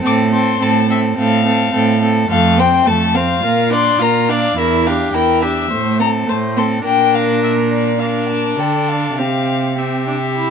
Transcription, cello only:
0.03 A2
0.60 A2
1.17 A2
1.73 A2
2.29 F2
2.86 F2
3.44 A#2
4.00 A#2
4.56 E2
5.13 E2
5.71 A2
6.28 A2
6.86 A#2
8.59 D3
9.17 C3

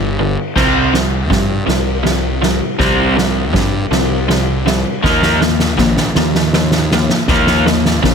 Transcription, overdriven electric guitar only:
Already playing: G2 D3
0.19 G2 D3
0.56 C3 G3 C4
0.93 C3 G3
1.30 C3 G3
1.67 C3 G3
2.03 C3 G3
2.42 C3 G3
2.79 C3 G3 C4
3.16 C3 G3
3.53 C3 G3
3.91 C3 G3
4.28 C3 G3
4.66 C3 G3
5.03 D#3 A#3 D#4
5.41 D#3 A#3
5.77 D#3 A#3
6.17 D#3 A#3
6.54 D#3 A#3
6.93 D#3 A#3
7.28 D#3 A#3 D#4
7.66 D#3 A#3
8.03 D#3 A#3

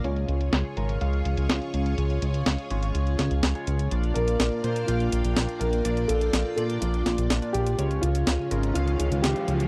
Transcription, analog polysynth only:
0.04 C#3 G#3 C#4 F4 C#5
0.77 C#3 G#3 C#4 F4 A#4
1.01 C#3 G#3 C#4 F4 F5
1.98 C#3 G#3 C#4 F4 C#5
2.71 C#3 G#3 C#4 F4 C#5
3.55 C#3 G#3 C#4 F4 C#5
3.92 A#2 A#3 D4 F4 D5
4.64 A#2 A#3 D4 F4 C5
4.88 A#2 A#3 D4 F4 G5
5.85 A#2 A#3 D4 F4 D5
6.58 A#2 A#3 D4 F4 D5
7.42 A#2 A#3 D4 F4 D5
7.79 C#3 G#3 C#4 F4 C#5
8.51 C#3 G#3 C#4 F4 A#4
8.75 C#3 G#3 C#4 F4 F5

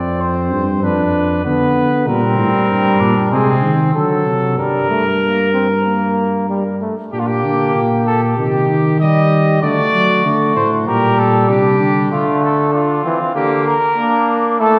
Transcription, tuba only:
Already playing: F2
0.52 G2
0.83 F2
1.45 D3
2.07 A#2
2.38 A2
2.70 G2
3.01 A#2
3.32 C3
3.63 D#3
3.94 D3
4.26 C3
4.58 G2
7.13 A#2
7.44 D3
7.75 A#2
8.38 C3
8.69 D#3
9.63 D3
9.94 F#3
10.25 D3
10.56 A2
10.87 A#2
11.49 C3
11.80 D3

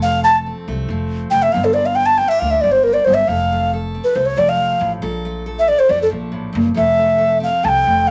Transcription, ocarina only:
0.02 F5
0.24 A5
1.30 G5
1.42 E5
1.52 F5
1.65 A4
1.74 D5
1.86 F5
1.95 G5
2.06 A5
2.18 G5
2.28 E5
2.39 F5
2.51 E5
2.61 D5
2.72 C5
2.84 A#4
2.94 D5
3.05 C5
3.14 E5
3.28 F5
4.04 B4
4.15 C5
4.26 C#5
4.38 D5
4.49 F5
5.59 E5
5.68 D5
5.79 C5
5.90 D5
6.02 A4
6.77 E5
7.43 F5
7.64 G5 A5
8.07 F5

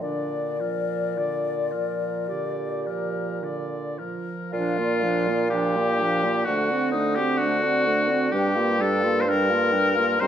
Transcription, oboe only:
0.03 D5
0.60 A#4
1.18 D5
1.71 A#4
2.29 D5
2.86 A#4
3.44 D5
3.98 A#4
4.53 F4
5.50 G4
6.45 F#4
6.91 D#4
7.15 G4
7.38 F#4
8.32 G4
8.81 A4
9.21 C5
9.29 A#4
10.20 C5

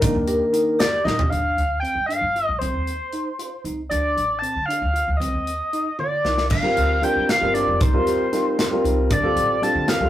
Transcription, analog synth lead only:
0.79 D5
1.04 D#5
1.30 F5
1.80 G5
2.06 F5
2.46 D#5
2.59 C5
3.89 D5
4.39 A5
4.66 F5
5.17 D#5
5.99 D5
6.51 F5
7.04 G5
7.30 F5
7.54 D5
7.82 C5
9.12 D5
9.63 A5
9.89 F5

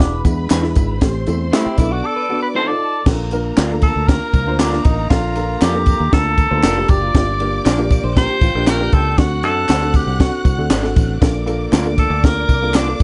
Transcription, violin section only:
0.00 B4 B5
1.02 C5 C6
1.78 D5 D6
2.55 A4 A5
3.06 A#3 A#5
7.14 D5 D6
8.16 G5 G6
9.18 F#5 F#6
11.22 D5 D6

